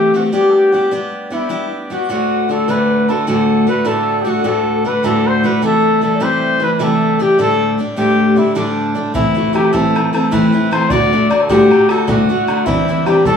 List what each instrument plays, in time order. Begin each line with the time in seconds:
Already playing: steel-string acoustic guitar C3 E3 A3 C4 G4, trumpet G4, flute G4
0.14 steel-string acoustic guitar E3 A3 C4 G4, trumpet F#4
0.32 steel-string acoustic guitar G3 B3 D4 G4, flute G4, trumpet G4
0.50 trumpet A4
0.54 trumpet G4
0.71 steel-string acoustic guitar G3 B3 D4 G4, trumpet F#4 G4, flute G4
0.91 steel-string acoustic guitar G3 B3 D4 G4
1.30 steel-string acoustic guitar G3 B3 D4 G4, trumpet E4, flute E4
1.49 steel-string acoustic guitar G3 B3 D4 G4
1.90 steel-string acoustic guitar G3 B3 D4 G4, flute F#4, trumpet F#4
2.09 steel-string acoustic guitar D2 A2 D3 A3 D4 F#4, flute F#4, trumpet F#4
2.49 steel-string acoustic guitar D3 A3 D4 F#4, flute A4, trumpet A4
2.68 steel-string acoustic guitar D2 A2 D3 A3 D4 F#4, flute B4, trumpet B4
3.08 steel-string acoustic guitar D3 A3 D4 F#4, trumpet A4, flute A4
3.27 steel-string acoustic guitar D2 A2 D3 A3 D4 F#4, trumpet A4, flute A4
3.67 steel-string acoustic guitar D3 A3 D4 F#4, flute B4, trumpet B4
3.80 flute B4
3.84 steel-string acoustic guitar D2 A2 D3 A3 D4 F#4, flute A4, trumpet A4
4.22 steel-string acoustic guitar D3 A3 D4, trumpet G4
4.26 steel-string acoustic guitar F#4, trumpet F#4
4.44 steel-string acoustic guitar D2 A2 D3 A3 D4 F#4, flute A4, trumpet A4
4.85 steel-string acoustic guitar D3 A3 D4 F#4, flute B4, trumpet B4
5.03 steel-string acoustic guitar D2 A2 D3 A3 D4 F#4, trumpet A4, flute A4
5.26 flute C5, trumpet C5
5.43 steel-string acoustic guitar D3 A3 D4 F#4, flute B4, trumpet B4
5.62 steel-string acoustic guitar C3 E3 G3 A3 E4, flute A4, trumpet A4
6.01 steel-string acoustic guitar E3 G3 A3 E4, flute A4, trumpet A4
6.15 flute D5
6.20 steel-string acoustic guitar C3 E3 G3 A3 E4, flute C5, trumpet C5
6.59 steel-string acoustic guitar E3 G3 A3 E4, flute B4
6.64 trumpet B4
6.73 trumpet B4
6.79 steel-string acoustic guitar C3 E3 G3 A3 E4, flute A4, trumpet A4
7.19 steel-string acoustic guitar E3 G3 A3 E4, flute G4, trumpet G4
7.37 steel-string acoustic guitar D2 A2 D3 G3 A3 D4, flute A4, trumpet A4
7.78 steel-string acoustic guitar D3 G3 A3 D4
7.96 steel-string acoustic guitar D2 A2 D3 G3 A3 D4, flute G4, trumpet G4
8.36 steel-string acoustic guitar D3 G3 A3 D4, trumpet E4
8.55 steel-string acoustic guitar D2 A2 D3 G3 A3 D4, trumpet D4, flute D4
8.95 steel-string acoustic guitar D3 G3 A3 D4
9.14 steel-string acoustic guitar A2 E3 A3 C4 E4, flute E4, trumpet E4, bodhran
9.35 steel-string acoustic guitar E3 A3 C4 E4, flute F#4, bodhran
9.53 steel-string acoustic guitar E3 A3 C4 E4, trumpet G4, flute G4, bodhran
9.72 steel-string acoustic guitar A2 E3 A3 C4 E4, flute A4, trumpet A4, bodhran
9.95 steel-string acoustic guitar E3 A3 C4 E4, bodhran
10.13 steel-string acoustic guitar E3 A3 C4 E4, trumpet A4, flute A4, bodhran
10.31 steel-string acoustic guitar A2 E3 A3 C4 E4, flute B4, trumpet B4, bodhran
10.52 steel-string acoustic guitar E3 A3 C4 E4
10.71 steel-string acoustic guitar E3 A3 C4 E4, trumpet C5, flute C5, bodhran
10.90 steel-string acoustic guitar D2 A2 D3 A3 D4 F#4, trumpet D5, flute D5, bodhran
11.12 steel-string acoustic guitar D3 A3 D4 F#4, bodhran
11.30 steel-string acoustic guitar D3 A3 D4 F#4, trumpet D5, flute D5, bodhran
11.42 trumpet A4
11.48 steel-string acoustic guitar D2 A2 D3 A3 D4 F#4, flute G4, trumpet G4, bodhran
11.71 steel-string acoustic guitar D3 A3 D4 F#4, bodhran
11.88 steel-string acoustic guitar D3 A3 D4 F#4, flute A4, trumpet A4, bodhran
12.04 steel-string acoustic guitar D2 A2 D3 A3 D4, flute F#4, bodhran
12.09 steel-string acoustic guitar F#4, trumpet F#4
12.29 steel-string acoustic guitar D3 A3 D4 F#4
12.47 steel-string acoustic guitar D3 A3 D4 F#4, bodhran
12.65 steel-string acoustic guitar E3 G3 C4 D4, flute E4, trumpet E4, bodhran
12.88 steel-string acoustic guitar E3 G3 C4 D4, bodhran
13.06 steel-string acoustic guitar E3 G3 C4 D4, flute G4, trumpet G4, bodhran
13.25 steel-string acoustic guitar E3 G3 C4 D4, flute A4, trumpet A4, bodhran